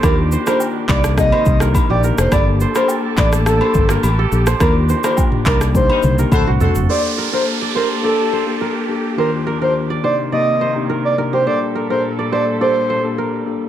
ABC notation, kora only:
X:1
M:4/4
L:1/16
Q:1/4=105
K:Gm
V:1 name="Kora"
d z c B z2 d z2 c z B z G B z | d z c B z2 d z2 c z B z A z c | d z c B z2 d z2 c z B z ^F A z | c z B B z d c z d z c z B2 z2 |
c z B B z d c z d z c z B z B G | c z B B z d c z d z c z B2 z2 |]